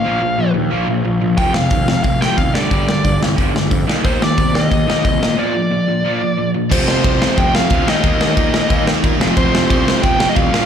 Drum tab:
CC |--------|--------|--------|--------|
HH |--------|o-o-o-o-|o-o-o-o-|o-o-o-o-|
SD |--------|-o-o-o-o|-o-o-o-o|-o-o-o-o|
BD |--------|o-o-o-o-|o-o-o-o-|o-o-o-o-|

CC |--------|x-x-x-x-|x-x-x-x-|x-x-x-x-|
HH |--------|--------|--------|--------|
SD |--------|-o-o-o-o|-o-o-o-o|-o-o-o-o|
BD |--------|o-o-o-o-|o-o-o-o-|o-o-o-o-|